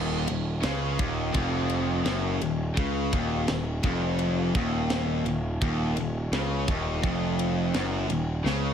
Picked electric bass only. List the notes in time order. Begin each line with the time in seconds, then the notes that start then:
Already playing: D#1
0.29 D#1
0.64 C#2
1.00 D#1
1.34 F1
2.06 F#1
2.42 D#1
2.77 C#2
3.13 D#1
3.49 D#1
3.83 F1
4.55 D#1
5.24 D#1
5.62 D#1
5.96 D#1
6.32 C#2
6.68 D#1
7.03 F1
7.74 F#1
8.08 D#1
8.44 C#2